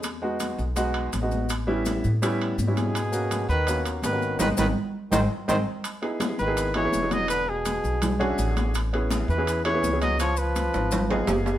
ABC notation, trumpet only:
X:1
M:4/4
L:1/8
Q:1/4=166
K:G#m
V:1 name="Trumpet"
z8 | z6 z G- | G3 B2 z B2 | B B z2 ^B z B z |
[K:C#m] z3 B2 c2 d | B G6 z | z3 B2 c2 d | c B6 z |]